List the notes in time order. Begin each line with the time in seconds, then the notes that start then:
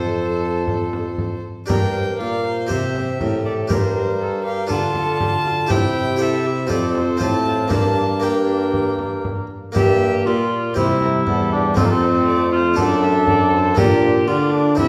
Already playing: F2 F4 A4 C5
0.68 frame drum
0.93 frame drum
1.18 frame drum
1.66 G2 D4 G4 A#4 G5, frame drum
1.70 A#4
1.95 C5
2.20 A#2 D5 F5
2.46 C5
2.67 C3 C4 G4 C5 E5, frame drum
2.72 G4
2.96 frame drum
3.21 A2 A#4, frame drum
3.46 A4 D5
3.68 G2 D4 G4 A#4 C5, frame drum
3.96 A#4
4.21 A4
4.44 G4 F5
4.67 D4 F4 A4 A5, frame drum
4.71 D3 F4
4.95 A4, frame drum
5.20 G4, frame drum
5.45 F4
5.66 C3 E4 G4 C5, frame drum
5.71 E4 G5
6.16 E4 G4 C5
6.20 E4 A4 E5
6.46 G4
6.67 F2 C4 F4 A4 C5, frame drum
6.71 D5
6.95 C5, frame drum
7.17 A2 C4 F4 C5, frame drum
7.21 G4 A5
7.46 F4
7.68 G2 A#3 D4 G4 A5, frame drum
7.72 A#3
8.20 A#3 D4 G4 G5
8.74 frame drum
8.99 frame drum
9.25 frame drum
9.72 G2 A#3 D4 G4 E5, frame drum
10.26 A#2 F4 D5
10.74 C3 G3 C4 E4 G4 C5, frame drum
11.02 A#4, frame drum
11.27 E2 A4, frame drum
11.52 D4 G4
11.74 F2 A3 C4 F4, frame drum
11.78 F2 A4
11.85 A#3
11.91 C4
12.04 C5
12.28 D5
12.52 F4 C5
12.74 F#2 A3 D4 A4
12.78 D4 D5, frame drum
13.02 E5, frame drum
13.27 D5, frame drum
13.53 C5
13.75 A#2 A#3 D4 F4 G4 A#4, frame drum
14.03 C5
14.27 D3 D4 F4 D5
14.53 D4
14.75 C3 C4 E4 E5, frame drum
14.80 C4